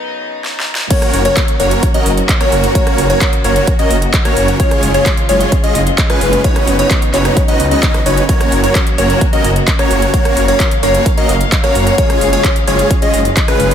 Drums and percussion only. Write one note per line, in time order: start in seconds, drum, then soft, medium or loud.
0.44 snare medium
0.60 snare medium
0.75 snare loud
0.91 kick loud
0.91 closed hi-hat loud
0.91 crash loud
1.02 cross-stick medium
1.02 closed hi-hat soft
1.14 open hi-hat loud
1.25 closed hi-hat soft
1.37 kick loud
1.37 clap loud
1.37 closed hi-hat medium
1.48 closed hi-hat soft
1.60 open hi-hat medium
1.71 closed hi-hat soft
1.83 kick loud
1.83 closed hi-hat loud
1.94 closed hi-hat soft
2.06 open hi-hat loud
2.17 closed hi-hat soft
2.29 kick loud
2.29 clap loud
2.29 closed hi-hat loud
2.41 cross-stick medium
2.41 closed hi-hat soft
2.52 open hi-hat medium
2.64 closed hi-hat soft
2.75 kick loud
2.75 closed hi-hat loud
2.87 cross-stick medium
2.87 closed hi-hat soft
2.98 open hi-hat loud
3.10 closed hi-hat soft
3.21 kick loud
3.21 clap loud
3.21 closed hi-hat medium
3.33 closed hi-hat soft
3.44 open hi-hat loud
3.56 closed hi-hat soft
3.67 kick loud
3.67 closed hi-hat medium
3.79 closed hi-hat soft
3.91 open hi-hat loud
4.02 closed hi-hat soft
4.14 kick loud
4.14 clap loud
4.14 closed hi-hat loud
4.25 cross-stick medium
4.25 closed hi-hat soft
4.37 open hi-hat loud
4.48 closed hi-hat soft
4.60 kick loud
4.60 closed hi-hat medium
4.71 cross-stick medium
4.71 closed hi-hat soft
4.83 open hi-hat loud
4.94 closed hi-hat soft
5.06 kick loud
5.06 clap loud
5.06 closed hi-hat medium
5.17 closed hi-hat soft
5.29 open hi-hat loud
5.41 closed hi-hat soft
5.52 kick loud
5.52 closed hi-hat medium
5.64 closed hi-hat soft
5.75 open hi-hat loud
5.87 closed hi-hat soft
5.98 kick loud
5.98 clap loud
5.98 closed hi-hat medium
6.10 cross-stick medium
6.10 closed hi-hat soft
6.21 open hi-hat loud
6.33 closed hi-hat soft
6.44 kick loud
6.44 closed hi-hat medium
6.56 cross-stick medium
6.56 closed hi-hat soft
6.67 open hi-hat loud
6.79 closed hi-hat soft
6.91 kick loud
6.91 clap loud
6.91 closed hi-hat medium
7.02 closed hi-hat soft
7.14 clap soft
7.14 open hi-hat loud
7.25 cross-stick medium
7.25 closed hi-hat soft
7.37 kick loud
7.37 closed hi-hat medium
7.48 closed hi-hat soft
7.60 open hi-hat loud
7.71 closed hi-hat soft
7.83 kick loud
7.83 clap loud
7.83 closed hi-hat medium
7.94 cross-stick medium
7.94 closed hi-hat soft
8.06 open hi-hat loud
8.17 closed hi-hat soft
8.29 kick loud
8.29 closed hi-hat medium
8.41 cross-stick medium
8.41 closed hi-hat soft
8.52 open hi-hat loud
8.64 closed hi-hat soft
8.75 kick loud
8.75 clap loud
8.75 closed hi-hat medium
8.87 closed hi-hat soft
8.98 open hi-hat medium
9.10 closed hi-hat soft
9.21 kick loud
9.21 closed hi-hat medium
9.33 closed hi-hat soft
9.44 open hi-hat loud
9.56 closed hi-hat soft
9.68 kick loud
9.68 clap loud
9.68 closed hi-hat medium
9.79 cross-stick medium
9.79 closed hi-hat soft
9.91 open hi-hat medium
10.02 closed hi-hat soft
10.14 kick loud
10.14 closed hi-hat medium
10.25 cross-stick medium
10.25 closed hi-hat soft
10.37 open hi-hat loud
10.48 closed hi-hat soft
10.60 kick loud
10.60 clap loud
10.60 closed hi-hat medium
10.71 closed hi-hat soft
10.83 open hi-hat medium
10.95 closed hi-hat soft
11.06 kick loud
11.06 closed hi-hat medium
11.18 closed hi-hat soft
11.29 open hi-hat loud
11.41 closed hi-hat soft
11.52 kick loud
11.52 clap loud
11.52 closed hi-hat medium
11.64 cross-stick medium
11.64 closed hi-hat soft
11.75 open hi-hat medium
11.87 closed hi-hat soft
11.98 kick loud
11.98 closed hi-hat loud
12.10 cross-stick medium
12.10 closed hi-hat soft
12.21 open hi-hat loud
12.33 closed hi-hat soft
12.44 kick loud
12.44 clap loud
12.44 closed hi-hat loud
12.56 closed hi-hat soft
12.68 open hi-hat medium
12.79 closed hi-hat soft
12.91 kick loud
12.91 closed hi-hat loud
13.02 closed hi-hat soft
13.14 open hi-hat loud
13.25 closed hi-hat soft
13.37 kick loud
13.37 clap loud
13.37 closed hi-hat loud
13.48 cross-stick medium
13.48 closed hi-hat soft
13.60 open hi-hat medium
13.71 closed hi-hat soft